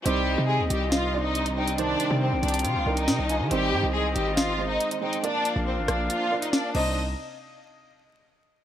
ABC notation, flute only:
X:1
M:4/4
L:1/8
Q:1/4=139
K:Cm
V:1 name="Flute"
z e6 g | z g6 a | z e6 g | z f6 e |
z8 |]